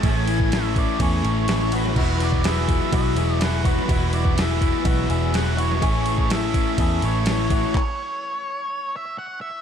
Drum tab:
CC |----------------|x---------------|----------------|----------------|
RD |x-x-x-x-x-x-x-x-|--x-x-x-x-x-x-x-|x-x-x-x-x-x-x-x-|x-x-x-x-x-x-x-x-|
CP |----------------|----------------|----------------|----------------|
SD |----o-------o--o|----o-------o--o|----o-------o--o|----o-------o---|
BD |o--o--o-o-------|o--o--o-o-----o-|o--o--o-o-------|o--o--o-o-----o-|

CC |----------------|
RD |----------------|
CP |x---------------|
SD |----------------|
BD |o---------------|